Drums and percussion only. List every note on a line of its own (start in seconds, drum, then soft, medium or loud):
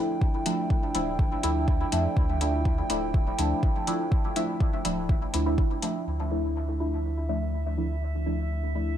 0.21 kick loud
0.46 closed hi-hat medium
0.70 kick loud
0.95 closed hi-hat medium
1.19 kick loud
1.43 closed hi-hat medium
1.68 kick loud
1.92 closed hi-hat medium
2.17 kick loud
2.41 closed hi-hat medium
2.65 kick medium
2.90 closed hi-hat medium
3.14 kick loud
3.39 closed hi-hat medium
3.63 kick loud
3.87 closed hi-hat medium
4.12 kick loud
4.36 closed hi-hat medium
4.60 kick loud
4.85 closed hi-hat medium
5.09 kick loud
5.34 closed hi-hat medium
5.58 kick loud
5.82 closed hi-hat medium